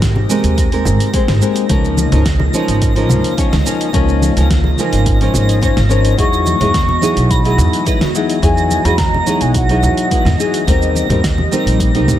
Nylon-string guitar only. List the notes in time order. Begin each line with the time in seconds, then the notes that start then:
0.29 G#3 C4 G4 A#4
0.72 G#3 C4 G4 A#4
1.13 G#3 C4 G4 C5
1.41 G#3 C4 G4 A#4
1.69 F3 C#4 D#4 A#4
2.12 F3 C#4 D#4 A#4
2.54 F3 C#4 D#4 A#4
2.95 F3 C#4 D#4 A#4
3.37 F3 C#4 D#4 C#5
3.65 F3 C#4 D#4 A#4
3.93 F3 C#4 D#4 A#4
4.37 F3 C#4 D#4 A#4
4.79 F3 C#4 D#4 A#4
5.21 F3 C#4 D#4 A#4
5.61 F3 C#4 D#4 C#5
5.89 F3 C#4 D#4 A#4
6.17 F#3 D#4 E4 G#4
6.60 F#3 D#4 E4 G#4
7.01 F#3 D#4 E4 G#4
7.45 F#3 D#4 E4 G#4
7.85 F#3 D#4 E4 B4
8.15 F#3 D#4 E4 G#4
8.42 F#3 D#4 E4 G#4
8.85 F#3 D#4 E4 G#4
9.26 F#3 D#4 E4 G#4
9.70 F#3 D#4 E4 G#4
10.11 F#3 D#4 E4 B4
10.38 F#3 D#4 E4 G#4
10.67 G3 C4 D#4 A#4
11.10 G3 C4 D#4 A#4
11.51 G3 C4 D#4 A#4
11.95 G3 C4 D#4 A#4